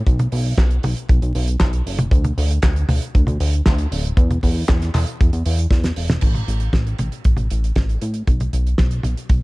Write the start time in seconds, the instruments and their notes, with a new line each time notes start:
0.07 analog synth bass B1, kick, closed hi-hat
0.19 closed hi-hat, high tom
0.32 analog synth bass B1, open hi-hat
0.45 open hi-hat
0.58 analog synth bass B1, kick, snare, clap
0.71 closed hi-hat
0.83 analog synth bass B1, open hi-hat, high tom
0.97 closed hi-hat
1.09 analog synth bass B1, kick, closed hi-hat
1.22 analog synth bass B1, closed hi-hat
1.35 analog synth bass B1, open hi-hat
1.48 closed hi-hat
1.60 analog synth bass B1, kick, snare, clap, closed hi-hat
1.73 closed hi-hat
1.86 analog synth bass F#1, open hi-hat
1.99 closed hi-hat, high tom
2.11 analog synth bass D2, kick, closed hi-hat
2.24 closed hi-hat, high tom
2.38 analog synth bass D2, open hi-hat
2.50 closed hi-hat
2.62 analog synth bass D2, kick, snare, clap, closed hi-hat
2.76 closed hi-hat
2.89 analog synth bass D2, open hi-hat, high tom
3.02 closed hi-hat
3.15 analog synth bass D2, kick, closed hi-hat
3.27 analog synth bass D2, closed hi-hat, high tom
3.40 analog synth bass D2, open hi-hat
3.53 closed hi-hat
3.66 analog synth bass D2, kick, snare, clap, closed hi-hat
3.78 closed hi-hat
3.92 analog synth bass D1, open hi-hat
4.05 closed hi-hat
4.17 analog synth bass E2, kick, closed hi-hat
4.31 closed hi-hat, high tom
4.43 analog synth bass E2, kick, open hi-hat
4.56 open hi-hat
4.69 analog synth bass E2, kick, snare, clap
4.81 snare, closed hi-hat
4.94 analog synth bass E2, clap, open hi-hat, high tom
5.07 closed hi-hat
5.21 analog synth bass E2, kick, closed hi-hat
5.33 analog synth bass E2, closed hi-hat
5.46 analog synth bass E2, open hi-hat
5.58 closed hi-hat
5.71 analog synth bass E2, kick, snare, closed hi-hat
5.84 snare, closed hi-hat
5.96 analog synth bass E1, open hi-hat
6.10 snare, closed hi-hat, high tom
6.21 analog synth bass A1, kick, closed hi-hat, crash
6.35 closed hi-hat, high tom
6.48 analog synth bass A1, closed hi-hat
6.60 closed hi-hat
6.73 analog synth bass A1, kick, snare, closed hi-hat
6.87 closed hi-hat
6.98 analog synth bass A1, closed hi-hat, high tom
7.12 closed hi-hat
7.24 analog synth bass A1, kick, closed hi-hat
7.37 analog synth bass A1, closed hi-hat, high tom
7.50 analog synth bass A1, closed hi-hat
7.64 closed hi-hat
7.76 analog synth bass A1, kick, snare, closed hi-hat
7.89 closed hi-hat
8.02 analog synth bass A2, closed hi-hat
8.14 closed hi-hat
8.27 analog synth bass B1, kick, closed hi-hat
8.40 closed hi-hat, high tom
8.53 analog synth bass B1, closed hi-hat
8.67 closed hi-hat
8.78 analog synth bass B1, kick, snare, closed hi-hat
8.91 closed hi-hat
9.03 analog synth bass B1, closed hi-hat, high tom
9.17 closed hi-hat
9.29 analog synth bass B1, kick, closed hi-hat